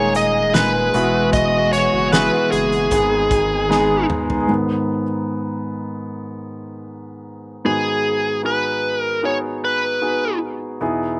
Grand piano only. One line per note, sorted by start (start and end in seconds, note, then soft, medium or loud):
0.00 0.96 D#3 medium
0.00 0.54 G#3 medium
0.00 0.96 A#3 medium
0.00 0.55 D#4 medium
0.00 0.55 G#4 medium
0.54 0.94 A#2 medium
0.54 0.92 G#3 medium
0.54 0.94 D#4 medium
0.54 0.94 G#4 medium
0.94 2.09 B2 medium
0.94 2.06 G#3 medium
0.94 2.06 B3 medium
0.94 2.07 E4 medium
0.94 2.07 F#4 medium
2.12 2.87 G#3 medium
2.12 2.87 B3 medium
2.12 2.88 E4 medium
2.12 2.88 G#4 medium
2.91 4.06 G#2 medium
2.91 4.06 D#3 medium
2.91 3.66 G#3 medium
2.91 3.66 B3 medium
2.91 3.67 D#4 medium
2.91 3.67 G#4 medium
3.69 4.45 G#3 medium
3.69 4.45 B3 medium
3.69 4.45 D#4 medium
3.69 4.45 G#4 medium
4.48 5.01 G#2 soft
4.48 5.02 D#3 soft
4.48 5.02 B3 soft
7.65 10.77 G#2 soft
7.65 10.77 D#3 soft
7.65 8.40 B3 soft
7.65 8.40 D#4 soft
7.65 8.40 F#4 soft
7.65 8.40 G#4 medium
8.43 9.18 B3 medium
8.43 9.19 D#4 soft
8.43 9.19 F#4 soft
8.43 9.19 G#4 medium
9.22 9.98 B3 medium
9.22 9.98 D#4 soft
9.22 9.98 F#4 soft
9.22 9.98 G#4 medium
10.01 10.76 B3 soft
10.01 10.77 D#4 soft
10.01 10.77 F#4 soft
10.01 10.77 G#4 medium
10.81 11.20 E2 medium
10.81 11.20 B2 soft
10.81 11.20 B3 medium
10.81 11.20 D#4 medium
10.81 11.20 E4 medium
10.81 11.20 G#4 medium